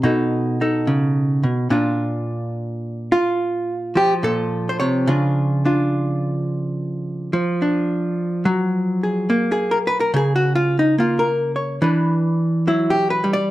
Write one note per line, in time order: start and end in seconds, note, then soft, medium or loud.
0.00 1.42 B2 medium
0.00 1.71 D#5 medium
0.04 0.60 D#4 soft
0.04 0.61 A4 soft
0.61 1.68 D#4 soft
0.61 1.69 A4 soft
0.87 1.44 C#3 medium
1.43 1.70 B2 medium
1.70 4.22 A#2 medium
1.70 5.04 D4 soft
1.70 3.12 F4 soft
3.12 4.23 F4 medium
3.95 7.32 F3 medium
3.95 4.13 G4 medium
4.23 4.80 A#2 medium
4.23 5.08 A4 medium
4.69 4.79 C5 medium
4.80 5.08 C3 medium
4.80 8.44 C#5 medium
5.07 7.33 C#3 medium
5.07 5.64 D4 soft
5.07 5.65 F4 soft
5.65 7.60 D4 soft
5.65 8.42 F4 soft
7.33 9.29 F3 medium
7.62 8.42 D4 soft
8.45 11.79 F#3 medium
9.03 9.51 G#4 soft
9.30 10.97 A#3 medium
9.52 9.83 G#4 medium
9.71 9.77 A#4 medium
9.87 10.00 B4 medium
10.00 10.11 A#4 medium
10.14 11.79 C#3 medium
10.14 10.35 G#4 medium
10.36 10.55 F#4 medium
10.55 10.76 F4 medium
10.79 10.95 D#4 medium
10.98 11.79 A#3 medium
10.98 11.27 F4 medium
11.19 11.51 A#4 medium
11.56 11.79 C#5 soft
11.82 13.51 E3 medium
11.82 12.66 D4 soft
11.82 12.90 B4 soft
12.67 13.23 F#3 soft
12.67 12.95 E4 medium
12.90 13.10 G4 medium
13.10 13.30 B4 medium
13.24 13.50 G3 medium
13.33 13.48 D5 medium